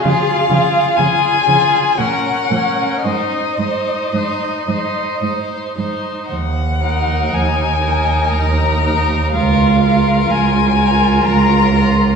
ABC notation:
X:1
M:3/4
L:1/8
Q:1/4=59
K:Abmix
V:1 name="Violin"
f2 a2 g2 | e4 z2 | [K:Bbm] g2 a2 b2 | f2 a2 b2 |]
V:2 name="Violin"
A A A A B B | c c c c c c | [K:Bbm] z B2 B2 B | B B2 B2 B |]
V:3 name="Viola"
F F F F D D | E E E E E E | [K:Bbm] z E2 E2 E | F F2 F2 F |]
V:4 name="Cello" clef=bass
D, D, D, D, B,, B,, | A,, A,, A,, A,, A,, A,, | [K:Bbm] E,,2 E,,2 E,,2 | D,,2 D,,2 D,,2 |]